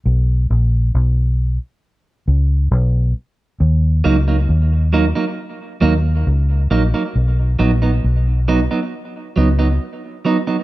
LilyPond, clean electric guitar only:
\new Staff \with { instrumentName = "Clean electric guitar" } { \time 4/4 \key ees \minor \tempo 4 = 68 r1 | r8 <ges bes ees'>16 <ges bes ees'>16 r8 <ges bes ees'>16 <ges bes ees'>16 r8 <ges bes ees'>16 r8. <ges bes ees'>16 <ges bes ees'>16 | r8 <fis b dis'>16 <fis b dis'>16 r8 <fis b dis'>16 <fis b dis'>16 r8 <fis b dis'>16 <fis b dis'>16 r8 <fis b dis'>16 <fis b dis'>16 | }